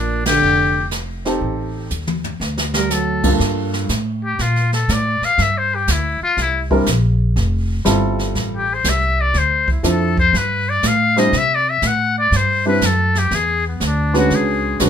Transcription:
Already playing: upright bass A#1, trombone A#2, muted trumpet D4
0.25 trombone D3, muted trumpet G4, snare, ride
0.42 upright bass F1, brush sweep
0.91 snare, hi-hat pedal
1.25 grand piano C4 D#4 G4 A4, snare
1.41 upright bass A1, brush sweep, kick
1.90 upright bass D#2, hi-hat pedal
2.07 mid tom
2.24 floor tom
2.40 upright bass D2, snare
2.58 snare
2.73 trombone G3, muted trumpet A#4, snare
2.90 trombone F#3, muted trumpet A4, snare, hi-hat pedal
3.24 grand piano G2 A#3 D4 F4 A4, kick, crash
3.40 upright bass G2, brush sweep, kick, snare
3.73 snare
3.89 upright bass A2, kick, snare, hi-hat pedal
4.25 muted trumpet G4
4.39 upright bass A#2, muted trumpet F4, brush sweep, kick, snare
4.56 snare
4.73 muted trumpet A4, snare
4.89 upright bass A2, kick, snare, hi-hat pedal
4.93 muted trumpet D5
5.21 muted trumpet F5, muted upright bass stroke, snare
5.38 upright bass G2, muted trumpet E5, brush sweep, kick, snare
5.58 muted trumpet C5
5.75 muted trumpet G4
5.87 upright bass D2, kick, snare, hi-hat pedal
5.92 muted trumpet E4
6.21 muted trumpet F4, muted upright bass stroke
6.37 upright bass C2, brush sweep, kick, snare
6.42 muted trumpet E4
6.70 grand piano G3 C4 D4 E4 A#4, kick
6.86 upright bass A#1, kick, snare, hi-hat pedal
7.36 upright bass F1, brush sweep, kick, snare
7.85 upright bass G1, grand piano G3 C4 E4 F4 A4, kick, snare, hi-hat pedal
8.19 snare
8.35 upright bass A1, brush sweep, kick, snare
8.57 muted trumpet G4
8.74 muted trumpet C5
8.84 upright bass C2, kick, snare, hi-hat pedal
8.90 muted trumpet E5
9.21 muted trumpet D5
9.34 upright bass D2, brush sweep, kick, snare
9.38 muted trumpet C5
9.68 muted trumpet E4, kick
9.83 upright bass F2, grand piano F3 C4 D4 E4 A4, kick, snare, hi-hat pedal
9.88 muted trumpet A4
10.17 muted trumpet C5, kick
10.33 upright bass G2, brush sweep, snare
10.37 muted trumpet B4
10.69 muted trumpet D5
10.83 upright bass A2, kick, snare, hi-hat pedal
10.87 muted trumpet F5
11.16 grand piano G3 C4 D4 E4 C5, muted trumpet D#5, snare
11.33 upright bass C3, brush sweep, kick, snare
11.38 muted trumpet E5
11.55 muted trumpet D5
11.70 muted trumpet E5
11.82 upright bass A2, kick, snare, hi-hat pedal
11.87 muted trumpet F#5
12.19 muted trumpet D5
12.32 upright bass G2, brush sweep, kick, snare
12.36 muted trumpet C5
12.66 grand piano G3 C4 D4 E4 B4, muted trumpet B4
12.81 upright bass F#2, kick, snare, hi-hat pedal
12.86 muted trumpet A4
13.15 muted trumpet G4, snare
13.31 upright bass E2, brush sweep, kick, snare
13.35 muted trumpet G#4
13.68 muted trumpet B3
13.80 upright bass D2, kick, snare, hi-hat pedal
13.86 muted trumpet D4
14.13 grand piano G#3 C#4 D4 F#4 B4, snare
14.17 muted trumpet F#4
14.30 upright bass C#2, brush sweep, kick, snare
14.35 muted trumpet G#4
14.79 upright bass B1, grand piano G#3 C#4 D4 F#4 B4, kick, snare, hi-hat pedal

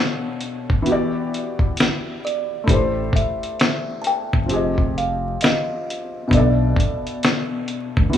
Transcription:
Already playing: felt piano B2 B3 D4 A4 C#5, kalimba F#5
0.41 closed hi-hat
0.70 kick
0.82 felt piano E3 B3, closed hi-hat
0.87 felt piano F#4 G4
0.92 felt piano D5
1.34 closed hi-hat
1.59 kick
1.77 snare, closed hi-hat
2.25 kalimba D5, closed hi-hat
2.64 felt piano A3 E4, kick
2.68 analog synth bass A1, felt piano G4 A4, kalimba C5, closed hi-hat
2.74 felt piano C5
3.13 kalimba E5, kick, closed hi-hat
3.43 closed hi-hat
3.60 snare, closed hi-hat
4.02 kalimba A5, closed hi-hat
4.07 kalimba G5
4.33 analog synth bass G1, kick
4.46 felt piano F3 C4, closed hi-hat
4.50 analog synth bass F1, felt piano G4 G#4
4.56 felt piano D#5
4.78 kick
4.98 kalimba F5, closed hi-hat
5.41 kalimba D#5, snare, closed hi-hat
5.90 closed hi-hat
6.27 analog synth bass B1, felt piano B2 B3, kalimba E5, kick
6.33 felt piano D4 A4, kalimba D5, closed hi-hat
6.37 felt piano D5
6.76 kick, closed hi-hat
7.07 closed hi-hat
7.23 snare, closed hi-hat
7.68 closed hi-hat
7.97 analog synth bass C#2, kick
8.10 felt piano E3 B3, closed hi-hat
8.14 analog synth bass E2, felt piano F#4

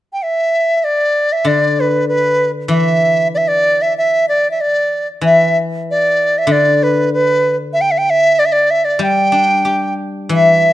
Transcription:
0.13 dizi G5
0.23 dizi E5
0.77 dizi E5
0.84 dizi D5
1.32 dizi E5
1.45 guzheng D3, dizi D5
1.80 dizi B4
2.08 dizi B4
2.68 guzheng E3, dizi E5
3.34 dizi D5 E5
3.48 dizi D5
3.82 dizi E5
3.98 dizi E5
4.29 dizi D5
4.51 dizi E5
4.61 dizi D5
5.21 guzheng E3
5.26 dizi E5
5.91 dizi D5
6.38 dizi E5
6.47 guzheng D3
6.52 dizi D5
6.83 dizi B4
7.14 dizi B4
7.73 dizi E5
7.81 dizi G5
7.91 dizi E5
7.98 dizi G5
8.10 dizi E5
8.39 dizi D5
8.46 dizi E5
8.52 dizi D5
8.70 dizi E5
8.85 dizi D5
8.99 guzheng G3, dizi G5
9.32 guzheng D4
9.65 guzheng G4
10.29 guzheng E3
10.34 dizi E5

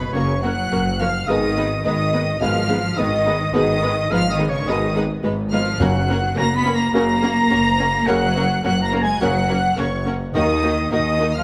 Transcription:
Already playing: cello section B2, oboe B4, flute section B4, trumpet section B4, violin section B5
0.11 double bass section F#1, trombone section C#3 F#3, cello section C#3, viola section A#3 C#4, french horn section A#3 A#4, violin section F#4 A#4 C#6, oboe C#5, trumpet section C#5, flute section C#5
0.42 cello section F#3, viola section A#3 C#4, violin section F#4 A#4 F#6, trumpet section F#5, flute section F#5, oboe F#5
0.71 double bass section F#1, viola section A#3 C#4, violin section F#4 A#4
0.99 cello section F3, viola section A#3 C#4, violin section F#4 A#4 F6, trumpet section F5, oboe F5, flute section F5
1.27 double bass section G#1, trombone section B2 D#3, cello section D#3, viola section G#3 B3, french horn section B3 G#4, violin section D#4 B4 D#6, oboe D#5, trumpet section D#5, flute section D#5
1.56 viola section G#3 B3, violin section D#4 B4
1.84 double bass section G#1, cello section D#3, viola section G#3 B3, violin section D#4 B4 D#6, trumpet section D#5, flute section D#5, oboe D#5
2.13 viola section G#3 B3, violin section D#4 B4
2.40 double bass section G#1, trombone section B2 D#3, cello section F3, viola section G#3 B3, french horn section B3 G#4, violin section D#4 B4 F6, trumpet section F5, oboe F5, flute section F5
2.69 viola section G#3 B3, violin section D#4 B4
2.97 double bass section G#1, cello section D#3, viola section G#3 B3, violin section D#4 B4 D#6, oboe D#5, trumpet section D#5, flute section D#5
3.26 viola section G#3 B3, violin section D#4 B4
3.52 double bass section G#1, trombone section B2 D#3, cello section D#3, viola section G#3 B3, french horn section B3 G#4, violin section D#4 B4 D#6, trumpet section D#5, oboe D#5, flute section D#5
3.82 viola section G#3 B3, violin section D#4 B4
4.10 double bass section G#1, cello section F3, viola section G#3 B3, violin section D#4 B4 F6, trumpet section F5, flute section F5, oboe F5
4.29 cello section D#3, flute section D#5, trumpet section D#5, oboe D#5, violin section D#6
4.39 viola section G#3 B3, violin section D#4 B4
4.47 cello section C#3, flute section C#5, trumpet section C#5, oboe C#5, violin section C#6
4.67 double bass section G#1, trombone section B2 D#3, cello section D#3, viola section G#3 B3, french horn section B3 G#4, violin section D#4 B4 D#6, trumpet section D#5, oboe D#5, flute section D#5
4.96 viola section G#3 B3, violin section D#4 B4
5.24 double bass section G#1, viola section G#3 B3, violin section D#4 B4
5.52 cello section F3, viola section G#3 B3, violin section D#4 B4 F6, trumpet section F5, oboe F5, flute section F5
5.79 double bass section F#1, timpani F#2, trombone section C#3 F#3, cello section F#3, french horn section A#3 A#4, viola section A#3 C#4, violin section F#4 A#4 F#6, trumpet section F#5, flute section F#5, oboe F#5
6.08 viola section A#3 C#4, violin section F#4 A#4
6.36 double bass section F#1, viola section A#3 C#4, cello section A#3, violin section F#4 A#4 A#6, trumpet section A#5, flute section A#5, oboe A#5
6.55 cello section B3, trumpet section B5, oboe B5, flute section B5, violin section B6
6.65 viola section A#3 C#4, violin section F#4 A#4
6.74 cello section A#3, trumpet section A#5, oboe A#5, flute section A#5, violin section A#6
6.93 double bass section F#1, trombone section C#3 F#3, french horn section A#3 A#4, cello section A#3, viola section A#3 C#4, violin section F#4 A#4 A#6, trumpet section A#5, oboe A#5, flute section A#5
7.22 viola section A#3 C#4, violin section F#4 A#4
7.50 double bass section F#1, viola section A#3 C#4, violin section F#4 A#4
7.79 viola section A#3 C#4, violin section F#4 A#4
8.06 double bass section F#1, trombone section C#3 F#3, cello section F#3, french horn section A#3 A#4, viola section A#3 C#4, violin section F#4 A#4 F#6, oboe F#5, trumpet section F#5, flute section F#5
8.36 viola section A#3 C#4, violin section F#4 A#4
8.64 double bass section F#1, cello section F#3, viola section A#3 C#4, violin section F#4 A#4 F#6, trumpet section F#5, oboe F#5, flute section F#5
8.82 cello section A#3, oboe A#5, flute section A#5, trumpet section A#5, violin section A#6
8.92 viola section A#3 C#4, violin section F#4 A#4
9.02 cello section G#3, oboe G#5, trumpet section G#5, flute section G#5, violin section G#6
9.20 double bass section F#1, trombone section C#3 F#3, cello section F#3, viola section A#3 C#4, french horn section A#3 A#4, violin section F#4 A#4 F#6, flute section F#5, trumpet section F#5, oboe F#5
9.49 viola section A#3 C#4, violin section F#4 A#4
9.77 double bass section F#1, cello section C#3, viola section A#3 C#4, violin section F#4 A#4 C#6, trumpet section C#5, flute section C#5, oboe C#5
10.06 viola section A#3 C#4, violin section F#4 A#4
10.34 double bass section D#2, trombone section D#3 F#3, cello section D#3, french horn section A#3 A#4, viola section A#3 D#4, violin section F#4 A#4 D#6, oboe D#5, trumpet section D#5, flute section D#5
10.63 viola section A#3 D#4, violin section F#4 A#4
10.91 double bass section D#2, cello section D#3, viola section A#3 D#4, violin section F#4 A#4 D#6, trumpet section D#5, oboe D#5, flute section D#5
11.19 viola section A#3 D#4, violin section F#4 A#4
11.35 cello section F3, trumpet section F5, oboe F5, flute section F5, violin section F6

